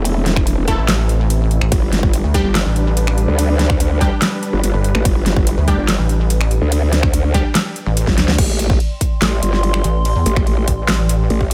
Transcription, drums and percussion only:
0.05 closed hi-hat, ride
0.26 snare, closed hi-hat
0.36 finger snap, kick
0.47 closed hi-hat, ride
0.68 kick, closed hi-hat
0.88 snare, clap, closed hi-hat, ride
1.09 closed hi-hat
1.30 closed hi-hat, ride
1.51 closed hi-hat
1.61 finger snap
1.72 kick, closed hi-hat, ride
1.93 snare, closed hi-hat
2.03 kick
2.13 closed hi-hat, ride
2.34 kick, closed hi-hat
2.55 snare, clap, closed hi-hat, ride
2.76 closed hi-hat
2.97 closed hi-hat, ride
3.07 finger snap
3.18 closed hi-hat
3.39 closed hi-hat, ride
3.59 snare, closed hi-hat
3.70 finger snap, kick
3.80 closed hi-hat, ride
4.01 kick, closed hi-hat
4.22 snare, clap, closed hi-hat, ride
4.43 closed hi-hat
4.64 closed hi-hat, ride
4.84 closed hi-hat
4.95 finger snap
5.05 kick, closed hi-hat, ride
5.26 snare, closed hi-hat
5.36 kick
5.47 closed hi-hat, ride
5.68 kick, closed hi-hat
5.88 snare, clap, closed hi-hat, ride
6.09 closed hi-hat
6.30 closed hi-hat, ride
6.41 finger snap
6.51 closed hi-hat
6.72 closed hi-hat, ride
6.93 snare, closed hi-hat
7.03 finger snap, kick
7.14 closed hi-hat, ride
7.34 kick, closed hi-hat
7.55 snare, clap, closed hi-hat, ride
7.76 closed hi-hat
7.97 closed hi-hat, ride
8.07 kick, snare
8.18 snare, closed hi-hat
8.28 snare
8.38 kick, ride, crash
8.59 closed hi-hat
8.70 kick
8.80 ride
9.01 kick, closed hi-hat
9.22 snare, clap, ride
9.43 closed hi-hat
9.53 snare
9.63 ride
9.74 finger snap
9.84 closed hi-hat
10.05 ride
10.26 closed hi-hat
10.36 finger snap, kick
10.47 ride
10.68 kick, closed hi-hat
10.88 snare, clap, ride
11.09 closed hi-hat
11.30 ride
11.41 kick

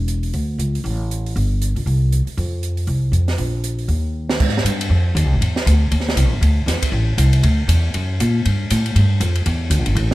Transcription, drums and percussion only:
0.08 closed hi-hat
0.23 open hi-hat
0.33 open hi-hat
0.59 closed hi-hat
0.75 open hi-hat
0.86 open hi-hat
1.11 closed hi-hat
1.26 open hi-hat
1.36 open hi-hat
1.62 closed hi-hat
1.76 open hi-hat
1.87 open hi-hat
2.12 closed hi-hat
2.27 open hi-hat
2.38 open hi-hat
2.63 closed hi-hat
2.77 open hi-hat
2.87 open hi-hat
3.13 closed hi-hat
3.28 snare, open hi-hat
3.38 open hi-hat
3.64 closed hi-hat
3.79 open hi-hat
3.89 open hi-hat
4.29 snare
4.40 kick, crash
4.49 snare
4.57 snare
4.66 hi-hat pedal, ride
4.81 ride
5.17 hi-hat pedal, ride
5.42 ride
5.56 snare
5.67 hi-hat pedal, ride
5.92 ride
6.00 snare
6.08 snare
6.17 hi-hat pedal, ride
6.42 ride
6.68 snare, hi-hat pedal, ride
6.82 kick, ride
7.18 hi-hat pedal, ride
7.33 ride
7.43 ride
7.69 hi-hat pedal, ride
7.94 ride
8.20 hi-hat pedal, ride
8.45 ride
8.70 hi-hat pedal, ride
8.86 ride
8.96 ride
9.21 hi-hat pedal, ride
9.36 ride
9.46 ride
9.71 hi-hat pedal, ride
9.86 ride
9.96 ride

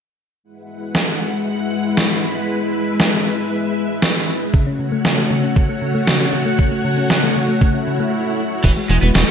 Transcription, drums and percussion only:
0.95 snare
1.97 snare
3.00 snare
4.02 snare
4.54 kick
5.05 snare
5.56 kick
6.07 snare
6.59 kick
7.10 snare
7.61 kick
8.64 kick, closed hi-hat, crash
8.90 closed hi-hat
9.02 closed hi-hat
9.15 snare, closed hi-hat

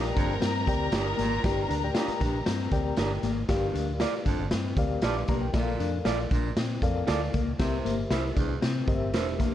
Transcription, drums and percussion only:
0.04 closed hi-hat
0.17 kick, closed hi-hat
0.42 snare, closed hi-hat
0.67 kick, closed hi-hat
0.92 snare, closed hi-hat
1.19 snare, closed hi-hat
1.44 kick, snare, closed hi-hat
1.70 closed hi-hat
1.95 snare, closed hi-hat
2.08 closed hi-hat
2.21 kick, closed hi-hat
2.46 snare, closed hi-hat
2.72 kick, closed hi-hat
2.97 snare, closed hi-hat
3.23 snare, closed hi-hat
3.49 kick, snare, closed hi-hat
3.75 closed hi-hat
4.00 snare, closed hi-hat
4.26 kick, closed hi-hat
4.51 snare, closed hi-hat
4.77 kick, closed hi-hat
5.02 snare, closed hi-hat
5.28 kick, snare, closed hi-hat
5.54 kick, snare, closed hi-hat
5.80 closed hi-hat
6.05 snare, closed hi-hat
6.31 kick, closed hi-hat
6.57 snare, closed hi-hat
6.82 kick, closed hi-hat
7.07 snare, closed hi-hat
7.34 kick, closed hi-hat
7.59 kick, snare, closed hi-hat
7.86 closed hi-hat
8.11 snare, closed hi-hat
8.37 kick, closed hi-hat
8.62 snare, closed hi-hat
8.88 kick, closed hi-hat
9.14 snare, closed hi-hat
9.40 kick, snare, closed hi-hat

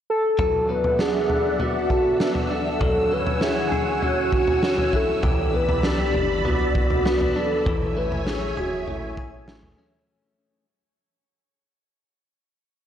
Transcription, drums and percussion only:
0.39 kick, floor tom
0.84 floor tom
0.99 snare
1.30 floor tom
1.60 floor tom
1.90 kick
2.20 snare
2.35 floor tom
2.81 kick, floor tom
3.27 floor tom
3.41 snare
3.72 floor tom
4.02 floor tom
4.32 kick
4.48 floor tom
4.63 snare
4.78 floor tom
4.93 kick
5.23 kick, floor tom
5.69 floor tom
5.83 snare
6.14 floor tom
6.45 floor tom
6.75 kick
6.90 floor tom
7.06 snare
7.21 floor tom
7.66 kick, floor tom
8.12 floor tom
8.27 snare
8.57 floor tom
8.87 floor tom
9.17 kick
9.48 snare
9.63 floor tom

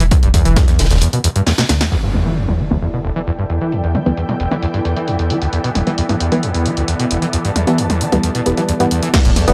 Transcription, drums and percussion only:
0.00 closed hi-hat
0.11 kick, closed hi-hat
0.23 closed hi-hat
0.34 kick, closed hi-hat, open hi-hat
0.45 closed hi-hat
0.56 kick, snare, closed hi-hat
0.68 snare, closed hi-hat
0.79 snare, open hi-hat
0.85 snare, open hi-hat
0.90 snare, closed hi-hat, open hi-hat
0.96 snare, open hi-hat
1.01 closed hi-hat
1.13 closed hi-hat
1.24 closed hi-hat, open hi-hat
1.36 closed hi-hat
1.46 snare, open hi-hat
1.58 snare, closed hi-hat, open hi-hat
1.69 snare, open hi-hat
1.81 snare, closed hi-hat, open hi-hat
2.14 mid tom
2.48 mid tom
2.60 closed hi-hat
2.71 closed hi-hat, mid tom
2.82 closed hi-hat
2.94 closed hi-hat
3.05 closed hi-hat
3.16 closed hi-hat
3.27 closed hi-hat
3.39 closed hi-hat
3.50 closed hi-hat
3.61 closed hi-hat
3.72 closed hi-hat
3.84 closed hi-hat
3.95 closed hi-hat, mid tom
4.06 closed hi-hat
4.17 closed hi-hat
4.29 closed hi-hat, mid tom
4.40 closed hi-hat
4.51 closed hi-hat, mid tom
4.63 closed hi-hat
4.74 closed hi-hat
4.85 closed hi-hat
4.97 closed hi-hat
5.08 closed hi-hat
5.19 closed hi-hat
5.30 closed hi-hat
5.42 closed hi-hat
5.53 closed hi-hat
5.64 closed hi-hat
5.75 closed hi-hat, mid tom
5.87 closed hi-hat
5.98 closed hi-hat
6.09 closed hi-hat, mid tom
6.20 closed hi-hat
6.32 closed hi-hat, mid tom
6.43 closed hi-hat
6.54 closed hi-hat
6.66 closed hi-hat
6.77 closed hi-hat
6.88 closed hi-hat
7.00 closed hi-hat
7.11 closed hi-hat
7.22 closed hi-hat
7.33 closed hi-hat
7.45 closed hi-hat
7.56 closed hi-hat, mid tom
7.67 closed hi-hat
7.78 closed hi-hat
7.90 closed hi-hat, mid tom
8.01 closed hi-hat
8.12 closed hi-hat, mid tom
8.23 closed hi-hat
8.35 closed hi-hat
8.46 closed hi-hat
8.57 closed hi-hat
8.69 closed hi-hat
8.80 closed hi-hat
8.91 closed hi-hat
9.03 closed hi-hat
9.14 kick, snare, closed hi-hat, crash
9.25 closed hi-hat
9.36 closed hi-hat, open hi-hat, mid tom
9.48 closed hi-hat

